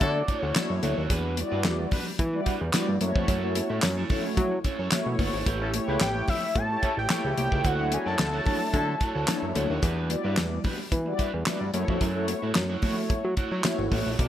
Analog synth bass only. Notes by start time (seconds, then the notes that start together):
0.01 D3
0.43 D2
0.70 F#2
0.83 D2
0.98 D#2
1.10 E2
1.52 G2
1.65 E2
2.19 E3
2.61 E2
2.88 G2
3.01 F#2
3.16 F2
3.28 F#2
3.70 A2
3.83 F#2
4.37 F#3
4.79 F#2
5.06 B2
5.19 G1
5.33 G#1
5.46 A1
5.88 C#2
6.01 A1
6.56 A2
6.97 A1
7.24 C#2
7.38 C2
7.52 C#2
7.65 D2
8.06 F#2
8.19 D2
8.74 D3
9.15 D2
9.43 F#2
9.56 D2
9.70 D#2
9.83 E2
10.25 G2
10.37 E2
10.92 E3
11.34 E2
11.61 G2
11.74 F#2
11.88 F2
12.01 F#2
12.43 A2
12.56 F#2
13.25 F#3
13.52 F#3
13.79 G#1
13.92 A1
14.06 A#1
14.19 B1